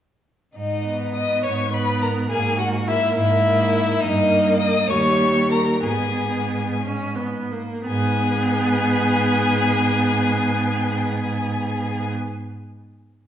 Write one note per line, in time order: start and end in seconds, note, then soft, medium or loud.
0.56 1.34 G#2 soft
0.56 1.11 D#4 soft
0.56 1.11 D#5 medium
0.85 1.71 B3 soft
1.15 1.45 D#5 medium
1.15 1.43 D#6 medium
1.43 2.20 G#2 medium
1.43 1.71 C#5 medium
1.43 1.75 C#6 medium
1.72 2.29 B3 soft
1.72 2.03 B4 medium
1.72 2.02 B5 medium
2.01 2.30 A#4 medium
2.01 2.10 A#5 medium
2.29 3.06 G#2 medium
2.29 2.58 A#3 soft
2.29 2.60 G#4 medium
2.29 2.59 G#5 medium
2.58 3.42 A#3 soft
2.58 2.89 F#4 medium
2.58 2.68 F#5 medium
2.87 3.15 E4 medium
2.87 3.16 E5 medium
3.16 3.91 G#2 medium
3.16 4.02 E4 medium
3.16 4.03 E5 medium
3.43 3.99 A#3 medium
4.00 4.86 G2 medium
4.00 4.91 A#3 medium
4.00 4.59 D#4 medium
4.00 4.62 D#5 medium
4.59 4.89 D#5 medium
4.59 4.92 D#6 medium
4.89 5.85 D#2 medium
4.89 5.82 G3 medium
4.89 5.50 C#5 medium
4.89 5.51 C#6 loud
5.51 5.84 A#4 medium
5.51 5.83 A#5 medium
5.83 7.63 G#2 medium
5.83 6.74 B3 soft
5.83 6.82 G#4 medium
5.83 6.81 G#5 medium
6.82 7.17 C#4 medium
7.16 7.53 B3 soft
7.52 7.87 A#3 soft
7.88 12.11 G#2 medium
7.88 12.10 B3 medium
7.88 12.10 G#4 medium
7.88 12.12 G#5 medium